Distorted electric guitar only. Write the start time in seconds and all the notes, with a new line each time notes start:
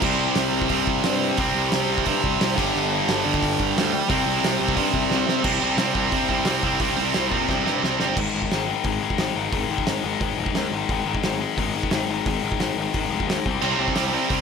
0.00 C3 G3 C4
0.69 C3 G3 C4
1.38 C3 G3 C4
2.05 C3 G3 C4
2.54 G2 D3 G3
3.24 G2 D3 G3
4.09 C3 G3 C4
4.75 C3 G3 C4
5.43 C3 G3 C4
5.60 C3 G3 C4
5.77 C3 G3 C4
5.94 C3 G3 C4
6.10 C3 G3 C4
6.29 C3 G3 C4
6.46 C3 G3 C4
6.64 C3 G3 C4
6.80 C3 G3 C4
6.97 C3 G3 C4
7.14 C3 G3 C4
7.32 C3 G3 C4
7.48 C3 G3 C4
7.65 C3 G3 C4
7.82 C3 G3 C4
8.00 C3 G3 C4
13.62 C3 G3 C4
13.80 C3 G3 C4
13.97 C3 G3 C4
14.13 C3 G3 C4
14.30 C3 G3 C4